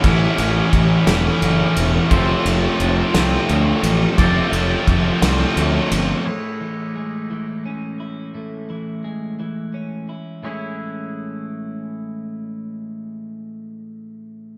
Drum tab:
RD |xxxxxx|xxxxxx|xxxxxx|------|
SD |---o--|---o--|---o--|------|
BD |o-o---|o-----|o-o---|------|

RD |------|------|------|
SD |------|------|------|
BD |------|------|------|